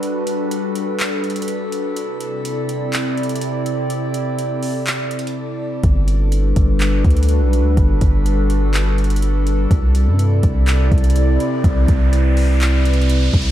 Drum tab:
HH |x-----------x-----------x-----------x-----------x-----------x--x--x--x--x-----------x-----------|x-----------x-----------x-----------x-----------x-----------x--x--x--x--x-----------x-----------|x-----------x-----------x-----------o-----------x-----------x---x---x---------------------------|x-----------x-----------x-----------x-----------x-----------x--x--x--x--x-----------x-----------|
CP |------------------------------------------------x-----------------------------------------------|------------------------------------------------x-----------------------------------------------|------------------------------------------------x-----------------------------------------------|------------------------------------------------x-----------------------------------------------|
BD |------------------------------------------------------------------------------------------------|------------------------------------------------------------------------------------------------|------------------------------------------------------------------------------------------------|o-----------------------------------o-----------------------o-----------------------------------|

HH |x-----------x-----------x-----------x-----------x-----------x--x--x--x--x-----------x-----------|x-----------x-----------x-----------x-----------x-----------x--x--x--x--x-----------x-----------|x-----------x-----------x-----------o-----------x-----------x---x---x---x-----------x---x-------|
CP |------------------------------------------------x-----------------------------------------------|------------------------------------------------x-----------------------------------------------|------------------------------------------------x-----------------------------------------------|
BD |o-----------o-----------------------------------------------------------------------------------|o-----------------------------------o-----------------------o-----------------------------------|o-----------o-----------------------------------------------------------------------o-----------|